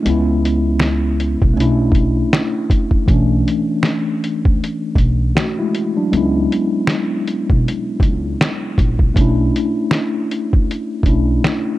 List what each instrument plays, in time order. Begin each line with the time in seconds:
0.03 upright bass C#2, tine electric piano G#3 B3, closed hi-hat
0.08 tine electric piano C#4 E4
0.45 closed hi-hat
0.80 finger snap, snare, closed hi-hat
1.20 closed hi-hat
1.42 upright bass B1, kick
1.54 upright bass B1, tine electric piano A3 C#4
1.58 tine electric piano D4 E4, closed hi-hat
1.92 kick, closed hi-hat
2.33 finger snap, snare, closed hi-hat
2.70 kick, closed hi-hat
2.91 kick
3.06 upright bass B1, tine electric piano E3 A3, kick, closed hi-hat
3.10 tine electric piano C#4 D4
3.48 closed hi-hat
3.83 finger snap, snare, closed hi-hat
4.24 closed hi-hat
4.45 upright bass D2, kick
4.64 closed hi-hat
4.95 upright bass B1, kick, closed hi-hat
5.35 tine electric piano A3 F#4, finger snap, snare, closed hi-hat
5.59 tine electric piano G#3 E4
5.75 closed hi-hat
5.97 tine electric piano F#3 D4
6.11 upright bass C#2, tine electric piano G#3 B3, closed hi-hat
6.15 tine electric piano C#4 E4
6.52 closed hi-hat
6.87 finger snap, snare, closed hi-hat
7.28 closed hi-hat
7.50 upright bass B1, kick
7.68 closed hi-hat
8.00 upright bass C#2, kick, closed hi-hat
8.41 finger snap, snare, closed hi-hat
8.78 upright bass A#1, kick, closed hi-hat
8.99 kick
9.14 upright bass B1, tine electric piano A3 C#4, kick, closed hi-hat
9.19 tine electric piano D4 E4
9.56 closed hi-hat
9.91 finger snap, snare, closed hi-hat
10.31 closed hi-hat
10.53 upright bass D2, kick
10.71 closed hi-hat
11.03 upright bass B1, tine electric piano A3 C#4, kick, closed hi-hat
11.08 tine electric piano D4 E4
11.44 finger snap, snare, closed hi-hat